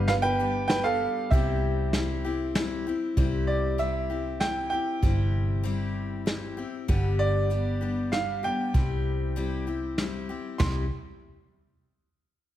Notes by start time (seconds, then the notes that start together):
Already playing: G1 G4
0.08 G3 B3 D4 G4 B4 F5, snare, closed hi-hat
0.22 B4 G5
0.39 G3 B3 D4 G4
0.68 G3 B3 B4 G5, snare, closed hi-hat
0.72 D4 G4
0.84 A4 F5
1.30 C2 C3 G3 C4 E4 G4 E5, kick, closed hi-hat
1.93 G3 C4 E4 G4, snare, closed hi-hat
2.25 C4 E4 G4
2.55 G3 C4 E4 G4, snare, closed hi-hat
2.87 C4 E4 G4
3.17 C2 C3 G3 C4 E4 G4, kick, closed hi-hat
3.47 D5
3.78 G3 C4 E4 G4 E5, closed hi-hat
4.10 C4 E4 G4
4.40 G3 C4 E4 G4 G5, snare, closed hi-hat
4.70 E4 G4 G5
4.74 C4
5.02 G1 C3 G3 C4 E4 G4, kick, closed hi-hat
5.63 G3 C4 E4 G4, closed hi-hat
6.26 G3 C4 E4 G4, snare, closed hi-hat
6.57 C4 E4 G4
6.88 G1 G2 D3 G3 B3 D4 G4, kick, closed hi-hat
7.19 D5
7.50 G3 B3 D4 G4, closed hi-hat
7.81 G3 B3 D4 G4
8.12 G3 B3 D4 G4 F5, snare, closed hi-hat
8.43 G3 B3 D4 G4 G5
8.74 C2 C3 G3 C4 E4 G4, kick, closed hi-hat
9.36 G3 C4 E4 G4, closed hi-hat
9.67 C4 E4 G4
9.98 G3 C4 E4 G4, snare, closed hi-hat
10.29 C4 E4 G4
10.58 C2 C3 G3 C4 E4 G4 C6, snare, floor tom, crash